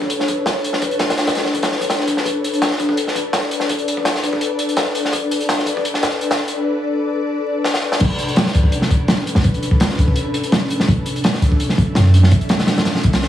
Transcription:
Already playing: D4 A4 B4 C#5
0.02 kick
0.10 closed hi-hat
0.20 snare
0.28 kick, closed hi-hat
0.46 snare, closed hi-hat
0.64 closed hi-hat
0.73 snare
0.82 kick, closed hi-hat
0.91 closed hi-hat
0.99 snare, closed hi-hat
1.10 snare, closed hi-hat
1.18 snare, closed hi-hat
1.27 snare, closed hi-hat
1.35 snare, closed hi-hat
1.45 snare
1.54 kick, closed hi-hat
1.63 snare, closed hi-hat
1.71 snare
1.81 kick, closed hi-hat
1.90 snare, closed hi-hat
2.00 snare
2.07 kick, closed hi-hat
2.17 snare
2.25 D5, kick, closed hi-hat
2.44 closed hi-hat
2.53 closed hi-hat
2.62 snare, closed hi-hat
2.71 snare
2.80 kick, closed hi-hat
2.89 kick
2.97 closed hi-hat
3.07 snare
3.15 kick, closed hi-hat
3.33 snare, closed hi-hat
3.51 closed hi-hat
3.60 snare
3.69 kick, closed hi-hat
3.78 closed hi-hat
3.88 closed hi-hat
3.97 kick
4.05 snare, closed hi-hat
4.15 snare
4.23 kick, closed hi-hat
4.33 kick
4.41 closed hi-hat
4.59 closed hi-hat
4.69 closed hi-hat
4.77 snare, closed hi-hat
4.95 closed hi-hat
5.05 snare
5.13 kick, closed hi-hat
5.31 closed hi-hat
5.40 closed hi-hat
5.49 snare, closed hi-hat
5.58 snare
5.66 kick, closed hi-hat
5.77 kick
5.85 closed hi-hat
5.94 snare
6.03 snare, closed hi-hat
6.21 closed hi-hat
6.31 snare, closed hi-hat
6.48 closed hi-hat
7.64 snare
7.74 snare
7.92 snare
8.00 B1 C#4 D4 A4 B4, kick, closed hi-hat, crash
8.19 closed hi-hat
8.28 closed hi-hat
8.36 snare, closed hi-hat
8.46 snare
8.55 kick, closed hi-hat
8.63 kick
8.72 closed hi-hat
8.82 snare
8.91 kick, closed hi-hat
9.08 snare, closed hi-hat
9.27 closed hi-hat
9.35 A1, snare
9.44 B1, kick, closed hi-hat
9.54 closed hi-hat
9.63 closed hi-hat
9.71 kick
9.80 snare, closed hi-hat
9.89 snare
9.98 kick, closed hi-hat
10.08 kick
10.16 closed hi-hat
10.34 closed hi-hat
10.43 closed hi-hat
10.52 snare, closed hi-hat
10.70 closed hi-hat
10.80 snare
10.88 B1 E5, kick, closed hi-hat
11.06 closed hi-hat
11.16 closed hi-hat
11.24 snare, closed hi-hat
11.34 snare
11.42 kick, closed hi-hat
11.52 kick
11.60 closed hi-hat
11.69 snare
11.78 B1, kick, closed hi-hat
11.95 F#2, snare, closed hi-hat
12.14 closed hi-hat
12.23 snare
12.32 B1, kick, closed hi-hat
12.41 closed hi-hat
12.49 snare, closed hi-hat
12.59 snare, closed hi-hat
12.67 snare, closed hi-hat
12.78 snare, closed hi-hat
12.85 snare, closed hi-hat
12.95 snare
13.03 B1, kick, closed hi-hat
13.13 snare, closed hi-hat
13.22 snare

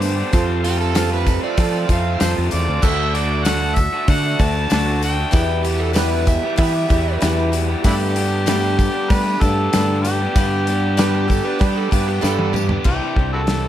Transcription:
Already playing: G2 D3 G3 B3 D4 G4 A4
0.00 A3 D4 G4 C5, open hi-hat, tambourine
0.15 G3 B3 D4 G4
0.31 F2 C3 F3 A3 C4 F4 A4, kick, open hi-hat, tambourine
0.62 F3 A3 C4 F4 G4 A4, open hi-hat, tambourine
0.80 A4
0.93 F2 C3 F3 A3 C4 F4 A4, snare, open hi-hat, tambourine
1.10 F3 A3 C4 F4 B4
1.25 C4 F4 A4, muted overdriven electric guitar stroke, kick, open hi-hat, tambourine
1.41 F3 A3 C4 F4 D5
1.56 F3 A3 C4 F4 A4, kick, open hi-hat, tambourine
1.72 F3 A3 C4 F4
1.87 F2 F3 A3 C4 F4 A4, kick, open hi-hat, tambourine
1.93 F5
2.18 F2 C3 F3 A3 C4 F4 A4 C5, snare, open hi-hat, tambourine
2.23 A4
2.35 F2 F3 A3 C4 F4
2.51 E2 C4 F4 A4 D5, open hi-hat, tambourine
2.66 D2 F3 A3 C4 F4
2.81 D2 D3 A3 D4 F#4 A4 E5, kick, tambourine, crash
3.14 D3 A3 D4 F#4 A4 D5, open hi-hat
3.43 D3 A3 D4 F#4 A4 F#5, snare, open hi-hat, tambourine
3.48 D4 F#4
3.60 A3 D4 F#4
3.76 A4 E5, muted overdriven electric guitar stroke, kick, open hi-hat, tambourine
3.80 D4 F#4
3.93 A3 D4 F#4
4.07 D3 A3 D4 F#4 A4 F#5, kick, open hi-hat
4.23 A3 D4 F#4
4.39 D2 D3 A3 D4 F#4 A4 A5, kick, open hi-hat, tambourine
4.70 D2 D3 A3 D4 F#4 A4, snare, open hi-hat, tambourine
4.74 F#4
4.86 A3 D4 F#4
5.01 D4 A4 G5, open hi-hat, tambourine
5.17 A3 D4 F#4
5.32 E2 B2 E3 G3 B3 E4 G4 B4, kick, open hi-hat, tambourine
5.63 E3 G3 B3 E4 G4, open hi-hat
5.80 A4
5.94 E2 B2 E3 G3 B3 E4 G4 B4, snare, open hi-hat, tambourine
6.11 E3 G3 B3 G4
6.25 B3 E4 G4 E5, muted overdriven electric guitar stroke, kick, open hi-hat, tambourine
6.43 E3 G3 B3 G4
6.57 E3 G3 B3 E4 G4 E5, kick, open hi-hat
6.61 B4
6.73 E3 G3 B3 G4
6.89 E2 E3 G3 B3 E4 G4, kick, open hi-hat, tambourine
7.21 E2 B2 E3 G3 B3 E4 G4 B4, snare, open hi-hat, tambourine
7.37 E3 G3 B3 G4
7.52 B3 E4 G4, open hi-hat, tambourine
7.68 E3 G3 B3 G4
7.82 G2 D3 G3 A3 B3 D4 E4 G4 A4 B4, kick, open hi-hat, tambourine
7.87 G4
8.15 G3 A3 B3 D4 G4, open hi-hat
8.46 G2 D3 G3 A3 B3 D4 G4 A4 B4, snare, open hi-hat, tambourine
8.61 G3 B3 D4 G4
8.78 A3 B3 D4 G4, muted overdriven electric guitar stroke, kick, open hi-hat, tambourine
8.92 G3 B3 D4 G4
9.09 G3 A3 B3 D4 G4 A4 B4, kick, open hi-hat
9.23 G3 B3 D4 G4
9.40 G2 G3 B3 D4 G4 A4, kick, open hi-hat, tambourine
9.45 A3
9.72 G2 D3 G3 A3 B3 D4 G4 A4 B4, snare, open hi-hat, tambourine
9.88 G3 B3 D4 G4
10.03 A3 B3 D4 G4, open hi-hat, tambourine
10.19 G3 B3 D4 G4
10.33 G2 D3 G3 B3 D4 G4 B4, kick, open hi-hat, tambourine
10.38 G4
10.66 G3 B3 D4 G4, open hi-hat, tambourine
10.70 G3
10.97 G2 D3 G3 B3 D4 G4 B4, snare, open hi-hat, tambourine
11.13 G3 B3 D4 G4
11.28 G3 B3 D4 G4 A4, muted overdriven electric guitar stroke, kick, open hi-hat, tambourine
11.44 G3 B3 D4 G4 B4
11.58 G3 B3 D4 G4 B4, kick, open hi-hat, tambourine
11.62 D4 G4
11.76 G3 B3 D4 G4 A4
11.91 G2 G3 B3 D4 G4 B4, kick, open hi-hat, tambourine
11.95 G4
12.08 G4
12.20 G2 D3 G3 D4 G4 A4 B4, snare, tambourine
12.24 B3 D4 G4
12.39 G3 B3 D4 G4, high tom
12.53 G3 B3 D4 G4, mid tom, tambourine
12.69 G3 B3 D4 G4, floor tom
12.84 C2 C3 E3 G3 C4 D4 E4 G4 C5, kick, crash
13.16 C2 G3 C4 D4 G4, kick
13.33 E4 F#4 A4
13.47 C3 E3 G3 C4 D4 G4, snare, open hi-hat

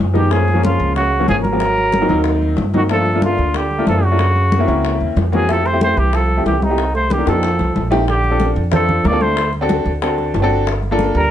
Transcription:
0.00 F#2
0.14 D#3 F3 G#3 B3 D#4 G4, high bongo, high conga
0.30 F3 G#3 A#3 C#4 G#4, high bongo, high conga
0.48 high bongo, high conga
0.54 F3 G#3 A#3 C#4
0.63 C#3 F4, high bongo, high conga
0.80 C#2, high bongo, high conga
0.96 C#3 F#4, high bongo, high conga
1.13 high conga
1.20 F3 G#3 A#3 C#4
1.28 G#1 F3 G#4, high bongo, low bongo, high conga
1.44 F#3 A#4, high bongo, high conga
1.52 F3 G#3 A#3 C4
1.60 high bongo, high conga
1.76 high bongo, high conga
1.92 high bongo, high conga
2.01 F#3 A#3 C4 D#4
2.09 D#2 F#3 A#3 C4 D#4, high bongo, high conga
2.24 high bongo, high conga
2.42 high conga
2.57 G2, high bongo, low bongo, high conga
2.74 D#3 F#3 A#3 C4 D#4 F#4, high bongo, high conga
2.89 F3 A3 A#3 D4 F4 A4, high bongo, high conga
3.06 high bongo, high conga
3.15 A3 A#3 D4 F4
3.22 D3 F4, high bongo, high conga
3.38 D2, high bongo, high conga
3.54 D3 G4, high bongo, high conga
3.71 high conga
3.79 A3 A#3 D4 F4
3.87 F#2 F3 A4, high bongo, low bongo, high conga
4.03 C#3 F#4, high bongo
4.11 A3 A#3 D4 F4
4.19 high bongo, high conga
4.35 high bongo, high conga
4.52 high bongo, high conga
4.59 A#3 C4 C#4 E4
4.67 C#2 A#3 C4 C#4 E4, high bongo, high conga
4.84 high bongo, high conga
5.00 D#2, high conga
5.16 F2, high bongo, low bongo, high conga
5.32 E3 A#3 C4 C#4 F#4 G#4, high bongo, high conga
5.48 F3 A3 C4 E4 G4 A4, high bongo, high conga
5.65 A3 C5, high bongo, high conga
5.73 A3 C4 E4 G4
5.81 A3 C5, high bongo, high conga
5.97 C2 E3 G4, high bongo, high conga
6.13 F3 A4, high bongo, high conga
6.30 high conga
6.37 A3 C4 E4 G4
6.46 C2 E3 G4, high bongo, low bongo, high conga
6.62 C3 D#4, high bongo, high conga
6.70 A3 C4 E4 G4
6.78 high bongo, high conga
6.94 A3 C5, high bongo, high conga
7.10 D#3 G4, high bongo, high conga
7.18 A#3 D4 D#4 G4
7.26 F2 F3 A#3 D4 D#4 G4 A4, high bongo, high conga
7.43 low bongo, high conga
7.59 C2, low bongo, high conga
7.76 A#1, low bongo, high conga
7.91 A3 C4 D#4 G4, low bongo, high conga
8.08 D3 G4, high bongo, high conga
8.24 high bongo, high conga
8.31 C4 D4 F4 A4
8.40 high bongo, high conga
8.56 F2, high bongo, high conga
8.71 F3 C4 D4 F4 A4 C5, high bongo, high conga, low conga
8.88 high bongo, high conga, low conga
9.04 D2 A#3 D5, high bongo, low bongo, high conga
9.12 C4 D4 F4 A4
9.21 A3 C5, high conga
9.37 high bongo, high conga
9.53 high bongo, high conga
9.61 C4 D4 F#4 A4
9.69 high bongo, high conga
9.86 D2, high bongo, high conga
10.02 C4 D4 F#4 A4, high bongo, high conga
10.18 high bongo, high conga
10.34 G1 A5, high bongo, low bongo, high conga
10.42 C4 D4 F#4 A4
10.50 high conga
10.67 high bongo, high conga
10.83 high bongo, high conga
10.91 A#3 D4 F4 A4
10.99 high bongo, high conga
11.15 D2 G3 A#4, high bongo, high conga

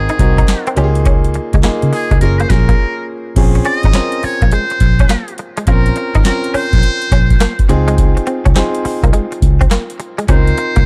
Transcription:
Already playing: C4 D#4 F#4 G#4 A#4
0.09 D#4, closed hi-hat
0.19 C2 C4 D#4 F#4 A#4, muted clean electric guitar stroke, kick, closed hi-hat
0.38 D#4, kick, closed hi-hat
0.48 muted clean electric guitar stroke, snare, clap, closed hi-hat
0.67 C4, closed hi-hat
0.76 C#2 A#3 C#4 D#4 F4 G4, closed hi-hat
0.84 G#4
0.95 closed hi-hat
1.06 C#4, kick, closed hi-hat
1.24 closed hi-hat
1.34 muted clean electric guitar stroke, closed hi-hat
1.53 C#2 G#3, kick, closed hi-hat
1.63 A#3 D#4 F4 G#4, muted fingered electric bass stroke, snare, clap, closed hi-hat
1.82 C#3, closed hi-hat
1.93 G#4, muted clean electric guitar stroke, open hi-hat
2.11 C#2 G#3, kick, closed hi-hat
2.21 F#1 A#3 C#4 F4 G#4 A#4, closed hi-hat
2.40 A#3 C5, closed hi-hat
2.50 A#1 A#3 C#4 F4 G#4 A#4, muted clean electric guitar stroke, kick, snare, closed hi-hat
2.69 A#3, kick, closed hi-hat
3.36 A#1 C4 C#4 F4 G#4, kick, closed hi-hat, crash
3.55 muted clean electric guitar stroke, closed hi-hat
3.65 C#4 D#5, closed hi-hat
3.83 G#1 D#4, kick, closed hi-hat
3.93 C4 C#4 F4 A#4, snare, clap, closed hi-hat
4.12 closed hi-hat
4.23 C#5, muted clean electric guitar stroke, muted fingered electric bass stroke, open hi-hat
4.42 A#1 A#3, kick, closed hi-hat
4.51 G#3 C5, closed hi-hat
4.70 muted clean electric guitar stroke, closed hi-hat
4.80 A#1, kick, closed hi-hat
4.99 C#4, kick, closed hi-hat
5.09 A#3, snare, clap, closed hi-hat
5.28 closed hi-hat
5.38 muted clean electric guitar stroke, closed hi-hat
5.57 G#3, closed hi-hat
5.67 A#1 A#3 C4 C#4 F4 A#4, kick, closed hi-hat
5.86 closed hi-hat
5.96 muted clean electric guitar stroke, closed hi-hat
6.15 G#1 D#4, kick, closed hi-hat
6.25 C4 C#4 F4 A#4, snare, clap, closed hi-hat
6.44 closed hi-hat
6.54 C#4 C5, muted fingered electric bass stroke, open hi-hat
6.73 A#1, kick, closed hi-hat
6.83 closed hi-hat
7.02 closed hi-hat
7.11 A#1 C#4, kick, closed hi-hat
7.30 kick, closed hi-hat
7.40 A#3, snare, clap, closed hi-hat
7.59 kick, closed hi-hat
7.69 C#2 C4 D#4 F4 G#4, muted clean electric guitar stroke, closed hi-hat
7.88 G#3, closed hi-hat
7.98 kick, closed hi-hat
8.17 muted clean electric guitar stroke, closed hi-hat
8.27 C4, closed hi-hat
8.45 C#2 C#4, kick, closed hi-hat
8.55 C4 D#4 F4 G#4, snare, clap, closed hi-hat
8.75 closed hi-hat
8.85 muted clean electric guitar stroke, muted fingered electric bass stroke, open hi-hat
9.03 C2 A#3, kick, closed hi-hat
9.13 G#3, closed hi-hat
9.32 muted clean electric guitar stroke, closed hi-hat
9.42 C#2, kick, closed hi-hat
9.61 C4, kick, closed hi-hat
9.71 A#3, snare, clap, closed hi-hat
9.90 closed hi-hat
10.00 muted clean electric guitar stroke, closed hi-hat
10.18 G#3, closed hi-hat
10.28 C#2 C4 C#4 D#4 F4 A#4 C5, kick, closed hi-hat
10.47 closed hi-hat
10.58 muted clean electric guitar stroke, closed hi-hat
10.76 C2 A#3, kick, closed hi-hat

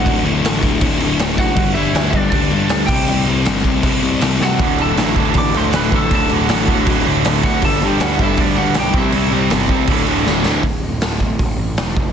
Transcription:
Already playing: F#4 F#5
0.06 D1 D2 A2 D3, kick, crash
0.24 D1 D2 A2 D3, crash
0.43 A1 D2 A2 D3, snare, crash
0.62 D1 D2 A2 D3, kick, crash
0.81 D1 D2 A2 D3, kick, crash
0.99 D1 D2 A2 D3, crash
1.19 D1 D2 A2 D3, snare, crash
1.38 F#1 D2 A2 D3 F#4 F#5, kick, crash
1.55 G1 G2 D3 G3, kick, crash
1.74 G2 D3 G3 E4 E5, crash
1.94 D2 G2 D3 G3, snare, crash
2.10 G1 G2 D3 G3 D4 D5, kick, crash
2.30 D2 G2 D3 G3 D4 D5, kick, crash
2.51 G2 D3 G3, crash
2.69 D2 G2 D3 G3, snare, crash
2.87 C2 C3 G3 C4 G4 G5, kick, crash
3.08 C2 C3 G3 C4, crash
3.26 C2 C3 G3 C4, crash
3.45 G1 C3 G3 C4, snare, crash
3.64 C2 C3 G3 C4, kick, crash
3.83 C2 C3 G3 C4, kick, crash
4.02 C2 C3 G3 C4, crash
4.21 C2 C3 G3 C4, snare, crash
4.40 C3 G3 C4 F#4 F#5, snare
4.59 D1 D2 A2 D3, kick, crash
4.78 D2 A2 D3 A5, crash
4.82 A4
4.96 A1 D2 A2 D3, snare, crash
5.15 D1 D2 A2 D3, kick, crash
5.34 A1 D2 A2 D3, kick, crash
5.38 D5 D6
5.54 D2 A2 D3 C5 C6, crash
5.73 D1 D2 A2 D3 B4 B5, snare, crash
5.92 A1 D2 A2 D3 A4 A5, kick, crash
6.11 D1 D2 A2 D3 A4, kick, crash
6.15 A5
6.29 D1 D2 A2 D3 F#4, crash
6.34 F#5
6.49 A1 D2 A2 D3, snare, crash
6.68 D1 D2 A2 D3, kick, crash
6.86 D1 D2 A2 D3, kick, crash
7.06 D1 D2 A2 D3, crash
7.25 D1 D2 A2 D3, snare, crash
7.43 D2 A2 D3 F#4 F#5, kick, crash
7.62 G1 G2 D3 G3 A5, kick, crash
7.66 A4
7.82 G2 D3 G3 G4 G5, crash
8.00 D2 G2 D3 G3 F#4 F#5, snare, crash
8.19 G1 G2 D3 G3 E4 E5, kick, crash
8.37 D2 G2 D3 G3 D4 D5, kick, crash
8.56 G2 D3 G3 F#4 F#5, crash
8.74 B1 G2 D3 G3, snare, crash
8.79 G4 G5
8.93 C2 C3 G3 C4, kick, crash
8.98 E4 E5
9.12 C2 C3 G3 C4, crash
9.31 C2 C3 G3 C4, crash
9.50 G1 C3 G3 C4, snare, crash
9.69 C2 C3 G3 C4, kick, crash
9.87 D1 D2 A2 D3, kick, crash
10.07 D1 D2 A2 D3, crash
10.26 D1 D2 A2 D3, snare
10.45 D2 A2 D3, snare
10.63 D1, kick, open hi-hat
10.83 D1
11.01 D1, snare, open hi-hat
11.20 D1, kick
11.39 D1, kick, open hi-hat
11.58 A1
11.77 E1, snare, open hi-hat
11.97 F1, kick

